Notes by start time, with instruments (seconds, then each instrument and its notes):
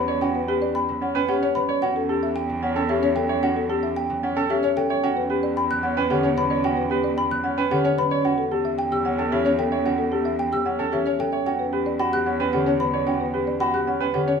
Already playing: cello E2, harp F#3 C#4, marimba B4, xylophone B5
0.08 grand piano C#5, marimba D5
0.21 harp C#4, grand piano F#4, xylophone G5
0.35 marimba B4
0.48 marimba G4, grand piano B4
0.62 marimba D5
0.75 marimba G5, xylophone B5
0.89 harp F#3
1.01 grand piano C#4, marimba F#5
1.15 harp C#4, grand piano B4, marimba G5
1.28 grand piano C#4, marimba G4, xylophone F#5
1.43 harp C#4, marimba C#5
1.55 harp F#3, marimba B4, xylophone B5
1.69 grand piano C#5, marimba D5
1.82 cello E2, harp C#4, grand piano F#4, xylophone F#5
1.96 marimba A4
2.09 marimba G4, grand piano A4
2.23 marimba E5
2.36 xylophone G5, marimba G5
2.49 harp F#3
2.63 grand piano C#4, marimba F#5
2.76 harp C#4, grand piano A4, marimba G5
2.89 grand piano C#4, marimba G4, xylophone E5
3.02 harp C#4, marimba C#5
3.16 harp F#3, marimba A4, xylophone G5
3.29 grand piano C#5, marimba E5
3.43 harp C#4, grand piano F#4, xylophone F#5
3.57 marimba A4
3.69 marimba G4, grand piano A4
3.83 marimba E5
3.96 xylophone G5, marimba G5
4.10 harp F#3
4.23 grand piano C#4, marimba F#5
4.37 harp C#4, grand piano A4, marimba G5
4.50 grand piano C#4, marimba G4, xylophone E5
4.63 harp C#4, marimba C#5
4.77 harp F#3, marimba A4, xylophone G5
4.90 grand piano C#5, marimba E5
5.03 cello E2, harp C#4, grand piano F#4, xylophone G5
5.17 marimba B4
5.30 marimba G4, grand piano B4
5.43 marimba D5
5.56 marimba G5, xylophone B5
5.70 harp F#3, xylophone F#6
5.83 grand piano C#4, marimba F#5
5.97 harp C#4, grand piano B4, marimba G5
6.10 harp D3, grand piano C#4, marimba G4, xylophone F#5
6.23 harp C#4, marimba C#5
6.37 harp F#3, marimba B4, xylophone B5
6.50 grand piano C#5, marimba D5
6.64 harp C#4, grand piano F#4, xylophone G5
6.77 marimba B4
6.90 marimba G4, grand piano B4
7.04 marimba D5
7.17 marimba G5, xylophone B5
7.31 harp F#3, xylophone F#6
7.44 grand piano C#4, marimba F#5
7.57 harp C#4, grand piano B4, marimba G5
7.71 harp D3, grand piano C#4, marimba G4, xylophone F#5
7.84 harp C#4, marimba C#5
7.98 harp F#3, marimba B4, xylophone B5
8.11 grand piano C#5, marimba D5
8.25 cello E2, harp C#4, grand piano F#4, xylophone F#5
8.38 marimba A4
8.52 marimba G4, grand piano A4
8.65 marimba E5
8.78 marimba G5, xylophone G5
8.92 harp F#3, marimba G4, xylophone E6
9.05 grand piano C#4, marimba F#5
9.18 harp C#4, grand piano A4, marimba G5
9.32 harp E3, grand piano C#4, marimba G4, xylophone E5
9.45 harp C#4, marimba C#5
9.58 harp F#3, marimba A4, xylophone G5
9.72 grand piano C#5, marimba E5
9.85 harp C#4, grand piano F#4, xylophone F#5
9.98 marimba A4
10.12 marimba G4, grand piano A4
10.25 marimba E5
10.39 marimba G5, xylophone G5
10.52 harp F#3, marimba G4, xylophone E6
10.66 grand piano C#4, marimba F#5
10.79 harp C#4, grand piano A4, marimba G5
10.92 harp E3, grand piano C#4, marimba G4, xylophone E5
11.06 harp C#4, marimba C#5
11.19 harp F#3, marimba A4, xylophone G5
11.32 grand piano C#5, marimba E5
11.46 cello E2, harp C#4, grand piano F#4, xylophone G5
11.59 marimba B4
11.73 marimba G4, grand piano B4
11.86 marimba D5
11.99 grand piano F#4, marimba G5, xylophone B5
12.13 harp F#3, marimba G4, xylophone F#6
12.26 grand piano C#4, marimba F#5
12.40 harp C#4, grand piano B4, marimba G5
12.53 harp D3, grand piano C#4, marimba G4, xylophone F#5
12.66 harp C#4, marimba C#5
12.80 harp F#3, marimba B4, xylophone B5
12.94 grand piano C#5, marimba D5
13.07 harp C#4, grand piano F#4, xylophone G5
13.21 marimba B4
13.34 marimba G4, grand piano B4
13.47 marimba D5
13.60 grand piano F#4, marimba G5, xylophone B5
13.74 harp F#3, marimba G4, xylophone F#6
13.87 grand piano C#4, marimba F#5
14.00 harp C#4, grand piano B4, marimba G5
14.14 harp D3, grand piano C#4, marimba G4, xylophone F#5
14.28 harp C#4, marimba C#5